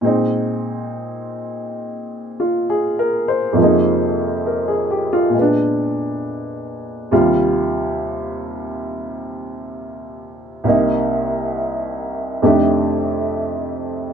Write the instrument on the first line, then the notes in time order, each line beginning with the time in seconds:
upright piano
0.01 A#2 G#3 C4
0.06 D#4
2.40 F4
2.70 G#4
2.99 A#4
3.28 C5
3.53 F2 C3
3.57 F3 G#3
3.61 A#3 D#4
4.46 A#4
4.68 G#4
4.91 G4
5.13 F4
5.30 A#2 G#3
5.37 B3 D4
7.11 D#2 C3 G3 F4
10.64 C2 C3 A#3
10.68 D#4
12.42 F2 C3 A3 D4 D#4 G4